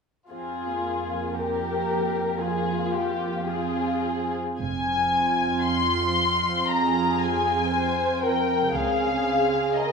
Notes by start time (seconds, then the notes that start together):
0.30 F2 C4 F4 G#4
0.84 A#3
1.36 G4 A#4
2.40 F4 G#4
2.91 G4
3.45 C4 F4 G#4
4.59 F1 F2 C4 F4 G#5
5.66 C6
6.69 G#4 A#5
7.20 G#5
7.73 C5
8.23 A#4 G5
8.74 C#2 C#3 C4 G#4 F5
9.78 A#4 D#5